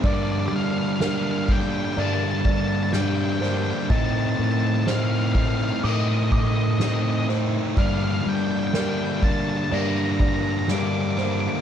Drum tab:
CC |xxxxxxxx|xxxxxxxx|xxxxxxxx|
SD |--o---oo|--o---oo|--o---oo|
BD |o--o-o--|o--o-o--|o--o-o--|